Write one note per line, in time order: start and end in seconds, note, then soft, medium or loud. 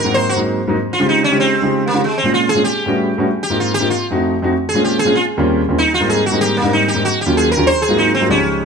0.00 0.13 A#4 medium
0.04 0.27 G#2 medium
0.04 0.27 F#3 medium
0.04 0.27 A#3 medium
0.04 0.27 C4 medium
0.04 0.27 F#4 medium
0.14 0.29 C5 loud
0.29 0.39 F#4 loud
0.36 0.58 G#2 medium
0.36 0.59 F#3 medium
0.36 0.59 A#3 medium
0.36 0.59 C4 medium
0.36 0.59 D#4 medium
0.68 0.75 G#2 medium
0.68 0.76 F#3 medium
0.68 0.76 A#3 medium
0.68 0.76 C4 medium
0.68 0.76 D#4 medium
0.93 1.07 F4 medium
0.99 1.21 C#3 medium
0.99 1.21 G#3 medium
0.99 1.22 C4 medium
0.99 1.22 D#4 medium
0.99 1.22 F4 medium
0.99 1.22 G4 medium
1.09 1.23 D#4 medium
1.24 1.39 C#4 medium
1.30 1.52 C#3 medium
1.30 1.53 G#3 medium
1.30 1.53 C4 medium
1.30 1.53 D#4 medium
1.30 1.53 F4 medium
1.30 1.53 G4 medium
1.40 1.83 C4 medium
1.62 1.84 C#3 medium
1.62 1.84 G#3 medium
1.62 1.84 C4 medium
1.62 1.84 D#4 medium
1.62 1.84 F4 medium
1.62 1.85 G4 medium
1.88 2.02 A#3 medium
1.92 2.00 C#3 medium
1.92 2.01 G#3 medium
1.92 2.01 C4 medium
1.92 2.01 D#4 medium
1.92 2.01 F4 medium
1.92 2.02 G4 medium
2.04 2.18 G#3 medium
2.18 2.32 C4 medium
2.24 2.46 A#2 medium
2.24 2.46 G#3 medium
2.24 2.46 C4 medium
2.24 2.47 C#4 medium
2.24 2.47 F4 medium
2.34 2.48 F4 medium
2.49 2.64 G#4 loud
2.54 2.63 A#2 medium
2.54 2.63 G#3 medium
2.54 2.63 C4 medium
2.54 2.64 C#4 medium
2.54 2.64 F4 medium
2.64 3.08 G4 medium
2.86 3.08 A2 medium
2.86 3.09 G3 medium
2.86 3.09 B3 medium
2.86 3.09 C#4 medium
2.86 3.09 E4 medium
2.86 3.09 F#4 medium
3.18 3.26 A2 medium
3.18 3.26 G3 medium
3.18 3.26 B3 medium
3.18 3.27 C#4 medium
3.18 3.27 E4 medium
3.18 3.27 F#4 medium
3.43 3.58 G4 loud
3.50 3.72 G#2 medium
3.50 3.72 A#3 medium
3.50 3.72 C4 medium
3.50 3.72 D#4 medium
3.50 3.72 F4 medium
3.60 3.74 F4 medium
3.74 3.89 G4 loud
3.80 3.88 G#2 medium
3.80 3.89 A#3 medium
3.80 3.89 C4 medium
3.80 3.89 D#4 medium
3.80 3.89 F4 medium
3.90 4.05 F4 medium
4.10 4.33 F2 medium
4.10 4.34 A3 medium
4.10 4.34 C4 medium
4.10 4.34 D#4 medium
4.10 4.34 F#4 medium
4.42 4.51 F2 medium
4.42 4.51 A3 medium
4.42 4.51 C4 medium
4.42 4.52 D#4 medium
4.42 4.52 F#4 medium
4.69 4.83 G#4 loud
4.74 4.96 A#2 medium
4.74 4.97 G#3 medium
4.74 4.97 C4 medium
4.74 4.97 C#4 medium
4.74 4.97 F4 medium
4.84 4.99 G4 medium
4.99 5.14 G#4 loud
5.05 5.13 A#2 medium
5.05 5.14 G#3 medium
5.05 5.14 C4 medium
5.05 5.14 C#4 medium
5.05 5.15 F4 medium
5.15 5.25 F4 medium
5.37 5.60 D#2 medium
5.37 5.60 G3 medium
5.37 5.60 A#3 medium
5.37 5.60 C4 medium
5.37 5.61 C#4 medium
5.37 5.61 F4 medium
5.68 5.77 D#2 medium
5.68 5.77 G3 medium
5.68 5.77 A#3 medium
5.68 5.77 C4 medium
5.68 5.77 C#4 medium
5.68 5.78 F4 medium
5.78 5.93 D#4 medium
5.94 6.09 F4 medium
6.00 6.22 G#2 medium
6.00 6.23 G3 medium
6.00 6.23 A#3 medium
6.00 6.23 C4 medium
6.00 6.23 D#4 medium
6.10 6.24 G#4 loud
6.26 6.41 F#4 medium
6.32 6.54 G#2 medium
6.32 6.54 G3 medium
6.32 6.54 A#3 medium
6.32 6.55 C4 medium
6.32 6.55 D#4 medium
6.41 6.56 G4 loud
6.57 6.72 A#3 medium
6.62 6.85 G#2 medium
6.62 6.85 G3 medium
6.62 6.85 A#3 medium
6.62 6.86 C4 medium
6.62 6.86 D#4 medium
6.73 6.88 D#4 medium
6.88 7.03 G4 loud
6.94 7.03 G#2 medium
6.94 7.03 G3 medium
6.94 7.03 A#3 medium
6.94 7.03 C4 medium
6.94 7.04 D#4 medium
7.05 7.19 F#4 medium
7.21 7.35 G4 medium
7.26 7.48 D#2 medium
7.26 7.49 F#3 medium
7.26 7.49 A#3 medium
7.26 7.49 C#4 medium
7.26 7.49 F4 medium
7.37 7.51 G#4 loud
7.52 7.66 A#4 loud
7.57 7.65 D#2 medium
7.57 7.66 F#3 medium
7.57 7.66 A#3 medium
7.57 7.66 C#4 medium
7.57 7.66 F4 medium
7.67 7.82 C5 loud
7.82 7.97 G#4 loud
7.89 8.11 G#2 medium
7.89 8.11 F#3 medium
7.89 8.11 A#3 medium
7.89 8.12 C4 medium
7.89 8.12 D#4 medium
7.89 8.12 F4 medium
7.98 8.13 D#4 medium
8.15 8.29 C4 medium
8.20 8.28 G#2 medium
8.20 8.29 F#3 medium
8.20 8.29 A#3 medium
8.20 8.29 C4 medium
8.20 8.29 D#4 medium
8.20 8.30 F4 medium
8.29 8.65 C#2 medium
8.29 8.65 F3 medium
8.29 8.65 G#3 medium
8.29 8.65 C#4 medium
8.29 8.65 D#4 medium
8.29 8.65 G4 medium
8.29 8.65 C5 medium